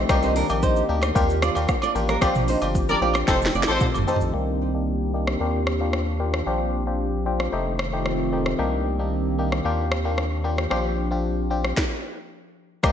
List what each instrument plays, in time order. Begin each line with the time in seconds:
Already playing: analog synth pad D#3 C4
0.09 sub bass C2, fm electric piano A#3 D4 D#4 G4, analog synth pad A#3 G4, kick, cross-stick, high agogo, shaker
0.23 nylon-string guitar D#4 C5, shaker
0.36 nylon-string guitar D4 A#4, open hi-hat, shaker
0.49 sub bass A#1, fm electric piano A#3 D4 D#4 G4, high agogo, shaker
0.63 nylon-string guitar D#4 C5, kick, shaker
0.76 shaker
0.89 sub bass D2, fm electric piano A#3 D4 D#4 G4
1.02 cross-stick, high agogo, shaker
1.15 sub bass D#2, fm electric piano A#3 D4 F4 G4, analog synth pad D4, kick, shaker
1.30 shaker
1.42 nylon-string guitar F4 D5, cross-stick, shaker
1.55 sub bass D#2, fm electric piano A#3 D4 F4 G4, high agogo, shaker
1.68 kick, cross-stick, low woodblock, shaker
1.82 nylon-string guitar F4 D5, high agogo, shaker
1.95 sub bass A1, fm electric piano A#3 D4 F4 G4, shaker
2.09 nylon-string guitar D4 A#4, cross-stick, shaker
2.21 sub bass A#1, analog synth pad F3 G4, fm electric piano C4 D4 F4 G4, nylon-string guitar F4 D5, kick, cross-stick, high agogo, shaker
2.35 mid tom, shaker
2.48 nylon-string guitar D#4 C5, open hi-hat, shaker
2.62 sub bass G1, fm electric piano C4 D4 F4 G4, high agogo, shaker
2.75 kick, shaker
2.89 nylon-string guitar D4 A#4, horn section G4 A#4 D5, shaker
3.01 sub bass A#1, fm electric piano C4 D4 F4 G4, nylon-string guitar F4 D5
3.14 cross-stick, high agogo, shaker
3.27 sub bass F1, analog synth pad D#3 A3 C4 F4, fm electric piano C4 D#4 G4 A4, horn section F4 A4 C5, kick, snare, shaker
3.42 snare, shaker
3.54 sub bass F1, nylon-string guitar F4 D5, shaker
3.63 snare
3.67 sub bass A1, fm electric piano C4 D#4 G4 A4, horn section F4 A4 C5, high agogo, shaker
3.80 kick, mid tom, low woodblock, shaker
3.94 sub bass G1, high agogo, shaker
3.98 floor tom
4.07 fm electric piano C4 D#4 G4 A4, nylon-string guitar D#4 C5, shaker
4.16 floor tom
4.21 sub bass A#1, shaker
4.33 sub bass C2, analog synth pad D#3 A#3 C4 G4, fm electric piano A#3 D4 D#4 G4
4.74 fm electric piano A#3 D4 D#4 G4
5.14 fm electric piano A#3 D4 D#4 G4
5.27 cross-stick
5.40 sub bass D#2, fm electric piano A#3 D4 F4 G4, analog synth pad D4
5.67 cross-stick
5.80 fm electric piano A#3 D4 F4 G4
5.93 cross-stick
6.20 fm electric piano A#3 D4 F4 G4
6.34 cross-stick
6.46 sub bass A#1, analog synth pad F3, fm electric piano C4 D4 F4 G4
6.87 fm electric piano C4 D4 F4 G4
7.26 fm electric piano C4 D4 F4 G4
7.40 cross-stick
7.52 sub bass F1, analog synth pad D#3 A3 C4 F4, fm electric piano A3 C4 D#4 G4
7.79 cross-stick
7.93 fm electric piano A3 C4 D#4 G4
8.06 cross-stick
8.32 fm electric piano A3 C4 D#4 G4
8.46 cross-stick
8.59 sub bass C2, fm electric piano A#3 D4 D#4 G4, analog synth pad A#3 C4 G4
8.99 fm electric piano A#3 D4 D#4 G4
9.38 fm electric piano A#3 D4 D#4 G4
9.52 cross-stick
9.65 sub bass D#2, fm electric piano A#3 D4 F4 G4, analog synth pad D4
9.92 cross-stick
10.05 fm electric piano A#3 D4 F4 G4
10.18 cross-stick
10.44 fm electric piano A#3 D4 F4 G4
10.58 cross-stick
10.70 sub bass A#1, analog synth pad F3 D4, fm electric piano C4 D4 F4 G4, cross-stick
11.11 fm electric piano C4 D4 F4 G4
11.50 fm electric piano C4 D4 F4 G4
11.64 cross-stick
11.77 kick, snare
12.83 sub bass C2, fm electric piano A#3 D4 D#4 G4, kick, cross-stick, high agogo, shaker